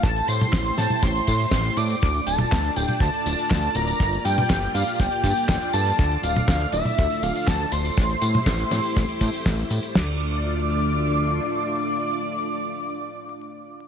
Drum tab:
CC |----------------|----------------|----------------|----------------|
HH |xxxxxxxxxxxxxxxx|xxxxxxxxxxxxxxxx|xxxxxxxxxxxxxxxx|xxxxxxxxxxxxxxxx|
TB |xxxxxxxxxxxxxxxx|xxxxxxxxxxxxxxxx|xxxxxxxxxxxxxxxx|xxxxxxxxxxxxxxxx|
CP |----x-------x---|----x-------x---|----x-------x---|----x-------x---|
SD |----o-o-----o---|----o-------o---|----o-------o---|----o-------o---|
T1 |---o---o--------|---o---o--------|---o------------|---o---o--------|
BD |o---o---o-o-o---|o---o---o---o---|o---o---o-o-o---|o---o---o---o---|

CC |----------------|x---------------|----------------|
HH |xxxxxxxxxxxxxxxx|----------------|----------------|
TB |xxxxxxxxxxxxxxxx|----------------|----------------|
CP |----x-------x---|----------------|----------------|
SD |----o-o-----o---|o---------------|----------------|
T1 |---o------------|----------------|----------------|
BD |o---o---o-o-o---|o---------------|----------------|